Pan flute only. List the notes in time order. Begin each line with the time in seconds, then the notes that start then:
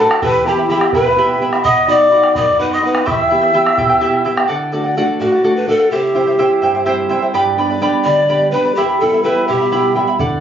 0.00 A4
0.23 B4
0.47 G4
0.69 G4
0.94 B4
1.65 D#5
1.88 D5
2.36 D5
2.60 B4
2.73 D#5
2.85 B4
3.09 E5
5.21 F#4
5.56 B4
5.69 A4
5.91 G4
8.05 D5
8.51 B4
8.75 G4
9.00 A4
9.23 B4
9.48 G4